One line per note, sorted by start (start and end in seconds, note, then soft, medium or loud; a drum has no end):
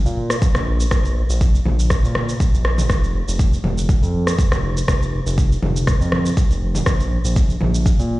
0.05 0.36 A#2 medium
0.05 shaker soft
0.30 cross-stick medium
0.30 shaker medium
0.42 kick loud
0.42 shaker medium
0.55 0.86 A#1 loud
0.55 cross-stick medium
0.55 mid tom medium
0.55 shaker soft
0.80 shaker medium
0.91 1.23 A#1 loud
0.91 kick loud
0.91 cross-stick medium
0.91 shaker medium
1.05 shaker soft
1.29 1.60 A#1 loud
1.29 shaker medium
1.41 kick loud
1.41 shaker medium
1.55 shaker soft
1.66 1.97 A#1 medium
1.66 mid tom medium
1.80 shaker medium
1.90 kick loud
1.90 cross-stick medium
1.90 shaker medium
2.04 2.34 A#2 medium
2.04 shaker soft
2.15 cross-stick medium
2.15 mid tom medium
2.29 shaker medium
2.40 kick loud
2.40 shaker medium
2.53 2.84 A#1 medium
2.53 shaker soft
2.65 cross-stick medium
2.78 mid tom medium
2.78 shaker medium
2.90 3.21 F1 loud
2.90 kick loud
2.90 cross-stick medium
2.90 shaker medium
3.04 shaker soft
3.28 3.58 F1 loud
3.28 shaker medium
3.39 kick loud
3.39 shaker medium
3.53 shaker soft
3.64 3.96 F1 medium
3.64 mid tom medium
3.78 shaker medium
3.89 kick loud
3.89 shaker medium
4.02 4.33 F2 medium
4.02 shaker soft
4.27 cross-stick medium
4.27 shaker medium
4.39 kick loud
4.39 shaker medium
4.52 4.83 F1 medium
4.52 cross-stick medium
4.52 mid tom medium
4.52 shaker soft
4.77 shaker medium
4.88 5.20 F1 loud
4.88 kick loud
4.88 cross-stick medium
4.88 shaker medium
5.02 shaker soft
5.26 5.57 F1 loud
5.26 shaker medium
5.38 kick loud
5.38 shaker medium
5.52 shaker soft
5.63 5.94 F1 medium
5.63 mid tom medium
5.77 shaker medium
5.87 kick loud
5.87 cross-stick medium
5.87 shaker medium
6.01 6.31 F2 medium
6.01 shaker soft
6.12 cross-stick medium
6.12 mid tom medium
6.26 shaker medium
6.37 kick loud
6.37 shaker medium
6.50 6.81 F1 medium
6.50 shaker soft
6.75 mid tom medium
6.75 shaker medium
6.86 7.18 A#1 loud
6.86 kick loud
6.86 cross-stick medium
6.86 shaker medium
7.00 shaker soft
7.25 7.55 A#1 loud
7.25 shaker medium
7.36 kick loud
7.36 shaker medium
7.50 shaker soft
7.61 7.92 A#1 medium
7.61 mid tom medium
7.75 shaker medium
7.86 kick loud
7.86 shaker medium
7.99 8.20 A#2 medium
7.99 shaker soft